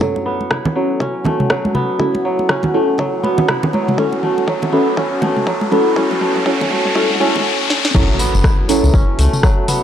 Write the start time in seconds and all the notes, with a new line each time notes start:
Already playing: A3 B3 C#4 E4
0.01 F#3 C#4 E4 F#4 A4 C#5 F#5, kick, mid tom, riser, high conga
0.16 muted conga
0.26 B3
0.41 muted conga
0.50 E4, kick, cross-stick, mid tom
0.65 muted conga, low conga
0.76 F#3 C#4 E4 F#4 A4
1.00 C#4, kick, mid tom, muted conga
1.24 A3, muted conga, high conga, low conga
1.40 mid tom, high conga
1.50 F#3, kick, cross-stick, muted conga
1.65 high conga
1.75 B3, mid tom, muted conga, high conga
1.99 C#4 E4 F#4 A4, kick, mid tom, high conga
2.15 muted conga
2.25 F#3
2.39 muted conga
2.49 C#4, kick, cross-stick, mid tom
2.63 muted conga, low conga
2.74 A3 C#4 E4 F#4 A4
2.98 F#3, kick, mid tom, muted conga
3.23 B3, muted conga, high conga
3.38 low conga
3.49 E4, kick, cross-stick, mid tom, muted conga
3.63 low conga
3.73 F#3, muted conga, high conga
3.88 mid tom, high conga
3.98 C#4 E4 F#4 A4, kick, mid tom, high conga
4.13 muted conga
4.23 A3, mid tom
4.38 muted conga
4.48 F#3, kick, mid tom
4.62 muted conga, low conga
4.72 B3 C#4 E4 F#4 A4, mid tom
4.97 C#4 E4 F#4 A4, kick, mid tom, muted conga
5.22 A3, mid tom, muted conga, high conga, low conga
5.36 mid tom, high conga
5.47 F#3, kick, mid tom, muted conga
5.61 high conga
5.71 B3 C#4 E4 F#4 A4, mid tom, muted conga, high conga
5.96 C#4 E4 F#4 A4, kick, mid tom, high conga
6.11 mid tom, muted conga
6.21 A3, mid tom
6.36 mid tom, muted conga
6.46 C#4 E4 F#4 A4, kick, mid tom
6.61 mid tom, muted conga, low conga
6.71 A3, mid tom, high conga
6.85 mid tom
6.95 C#4 E4 F#4 A4, kick, mid tom, muted conga
7.03 mid tom
7.10 mid tom
7.15 mid tom
7.20 C#4 E4 F#4 A4, mid tom, muted conga, high conga
7.28 mid tom
7.35 mid tom, low conga
7.40 mid tom
7.70 snare
7.85 snare
7.95 F#1 F#3 C#4 E4 F#4 A4 E5 A5, kick, tambourine, crash, impact
8.19 B3, open hi-hat, tambourine
8.34 F#1, tambourine
8.44 E4, kick, cross-stick, tambourine
8.69 F#3 C#4 E4 F#4 A4, open hi-hat, tambourine
8.84 C#2, tambourine
8.94 F#1 C#4, kick, tambourine
9.19 C#2 A3, open hi-hat, tambourine
9.33 mid tom, tambourine
9.43 F#3, kick, cross-stick, tambourine
9.68 B3, open hi-hat, mid tom, tambourine